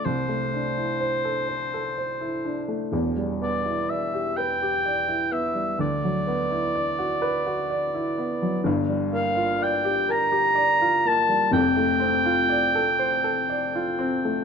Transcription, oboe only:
\new Staff \with { instrumentName = "Oboe" } { \time 6/8 \key c \major \tempo 4. = 42 c''2. | r8 d''8 e''8 g''4 e''8 | d''2. | r8 f''8 g''8 bes''4 a''8 |
g''2. | }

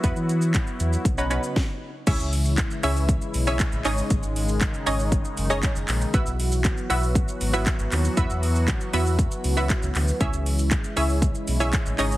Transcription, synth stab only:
\new Staff \with { instrumentName = "Synth stab" } { \time 4/4 \key cis \minor \tempo 4 = 118 <b e' fis' b'>4~ <b e' fis' b'>16 r4 <cis' dis' fis' b'>16 <cis' dis' fis' b'>8 r4 | <cis' e' gis' cis'' e''>4 r8 <cis' e' gis' cis'' e''>8. r8 <cis' e' gis' cis'' e''>8. <cis' dis' gis' cis'' dis''>8~ | <cis' dis' gis' cis'' dis''>4 r8 <cis' dis' gis' cis'' dis''>8. r8 <cis' dis' gis' cis'' dis''>8. r8 | <b e' fis' b' e''>4 r8 <b e' fis' b' e''>8. r8 <b e' fis' b' e''>8. r8 |
<b e' fis' b' e''>4 r8 <b e' fis' b' e''>8. r8 <b e' fis' b' e''>8. r8 | <cis' e' gis' cis'' e''>4 r8 <cis' e' gis' cis'' e''>8. r8 <cis' e' gis' cis'' e''>8. <cis' dis' gis' cis'' dis''>8 | }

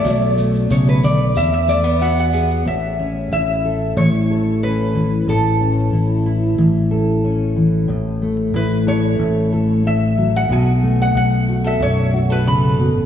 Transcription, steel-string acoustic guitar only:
\new Staff \with { instrumentName = "Steel-string acoustic guitar" } { \time 4/4 \key a \major \tempo 4 = 92 << { <fis a a'>8 a4. r8 a16 b16 fis'8 gis'8 | r8 cis'8 e'8 a'4 a'8 cis'4 | r8 cis'8 e'8 e'4 a'8 cis'4 | r8 a8 e'8 a'4 a'8 a4~ |
a8 a4 fis'16 a'8. fis'16 a'4~ a'16 | } \\ { b,4 cis8 d8 e,2 | a,2 e4. e8 | a,2 e4. e8 | a,2 a,4. fis8 |
b,2 fis,4 cis8 b,8 | } >> }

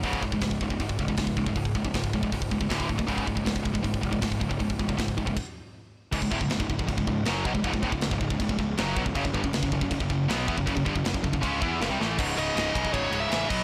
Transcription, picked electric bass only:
\new Staff \with { instrumentName = "Picked electric bass" } { \clef bass \time 4/4 \key cis \minor \tempo 4 = 158 cis,,8 cis,,8 cis,,8 cis,,8 gis,,8 e,,8 cis,,8 cis,,8 | cis,,8 cis,,8 cis,,8 cis,,8 cis,,8 cis,,8 d,,8 d,,8 | cis,,8 cis,,8 cis,,8 cis,,8 gis,,8 e,,8 cis,,8 cis,,8 | cis,,8 cis,,8 cis,,8 cis,,8 r2 |
cis,,16 cis,,16 d,,16 cis,,16 cis,,16 cis,,16 cis,,16 cis,,16 cis,,16 cis,,16 cis,,8 fis,,8 b,,16 cis,,16 | cis,,16 cis,,16 d,,16 cis,,16 cis,,16 cis,,16 cis,,16 cis,,16 cis,,16 cis,,16 cis,,8 fis,,8 b,,16 cis,,16 | fis,,16 fis,,16 g,,16 fis,,16 fis,,16 fis,,16 fis,,16 fis,,16 fis,,16 fis,,16 fis,,8 b,,8 e,16 fis,,16 | fis,,16 fis,,16 g,,16 fis,,16 fis,,16 fis,,16 fis,,16 fis,,16 cis,8 e,8 fis,,16 bis,,16 a,,8 |
cis,,8 cis,,8 cis,,8 b,,8 gis,,8 cis,,8 a,,8 b,,8 | }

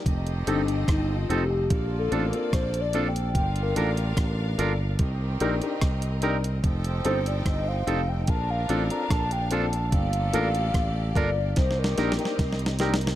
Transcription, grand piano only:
\new Staff \with { instrumentName = "Grand piano" } { \time 4/4 \key bes \major \tempo 4 = 73 r8 <c' ees' g' a'>16 r8. <c' ees' g' a'>16 r8. <c' d' f' a'>16 <c' d' f' a'>16 r8 <c' d' f' a'>16 r16 | r8 <bes d' f' a'>16 r8. <bes d' f' a'>16 r8. <d' ees' g' bes'>16 <d' ees' g' bes'>16 r8 <d' ees' g' bes'>16 r16 | r8 <c' ees' g' a'>16 r8. <c' ees' g' a'>16 r8. <c' d' f' a'>16 <c' d' f' a'>16 r8 <c' d' f' a'>16 r16 | r8 <bes d' f' a'>16 r8. <bes d' f' a'>16 r8. <bes d' ees' g'>16 <bes d' ees' g'>16 r8 <bes d' ees' g'>16 r16 | }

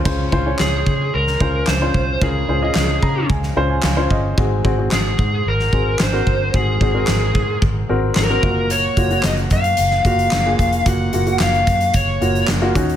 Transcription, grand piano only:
\new Staff \with { instrumentName = "Grand piano" } { \time 4/4 \key des \major \tempo 4 = 111 << { des4. r2 r8 | des4. bes''8 aes''8. aes''16 f''8 ees''8 | aes,4. r2 r8 | aes,4. r2 r8 |
r1 | r2. r8 ees8 | } \\ { <des' f' c''>8 <des' f' c''>16 <des' f' des''>4. r16 <des' f' c''>8. <des' f' c''>8. | <des' f' bes'>8 <des' f' c''>16 <des' f' ees''>4. r16 <des' f' c''>8. <des' f' c''>8. | <c' ges' aes'>8 <c' ges' aes'>16 <c' ges' aes'>4. r16 <c' ges' aes'>8. <c' ges' bes'>8. | <c' ges' aes'>8 <c' ges' aes'>16 <c' ges' bes'>4. r16 <c' ges' bes'>8. <c' ges' bes'>16 <bes f' ges'>8~ |
<bes f' ges'>16 r16 <bes f' ges'>16 <bes f' ges'>4. r16 <bes f' ges'>8. <bes f' aes'>8. | <bes f' ges'>8 <bes f' ges'>16 <bes f' ges'>4. r16 <bes f' ges'>8. <bes f' ges'>16 <des' ees' ges'>8 | } >> }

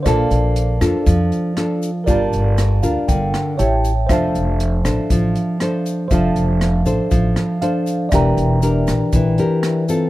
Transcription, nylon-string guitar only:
\new Staff \with { instrumentName = "Nylon-string guitar" } { \time 4/4 \key d \minor \tempo 4 = 119 << { <d' f' a'>4. <d' f' a'>4. <d' f' a'>8 r8 | <d' f' bes'>4. <d' f' bes'>4. <e' g' cis''>8 r8 | <d' a' c''>4. <d' a' c''>4. <d' a' c''>4 | <d' a' c''>4. <d' a' c''>4. <d' a' c''>4 |
<d' g' bes'>4 <d' g' bes'>4. <d' g' bes'>4 <c' f' a'>8 | } \\ { bes2 f2 | g2 d4 r4 | f2 f2 | f2 f2 |
e2 e2 | } >> }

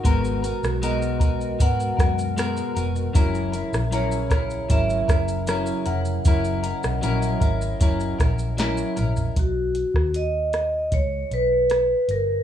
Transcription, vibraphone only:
\new Staff \with { instrumentName = "Vibraphone" } { \time 4/4 \key b \major \tempo 4 = 77 r4 dis''4 fis''2 | r4 cis''4 e''4. fis''8~ | fis''2.~ fis''8 r8 | fis'4 dis''4 cis''8 b'4 ais'8 | }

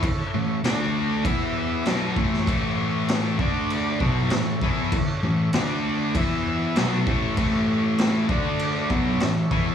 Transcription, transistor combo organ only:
\new Staff \with { instrumentName = "Transistor combo organ" } { \time 4/4 \key a \major \tempo 4 = 98 <e' a' cis''>4 <d' a' d''>4 <e' b' e''>4 <e' a' cis''>4~ | <e' a' cis''>4. <d' a' d''>4 <e' a' cis''>4.~ | <e' a' cis''>4 <d' a' d''>4 <e' b' e''>4 <e' a' cis''>4~ | <e' a' cis''>4. <d' a' d''>4 <e' a' cis''>4. | }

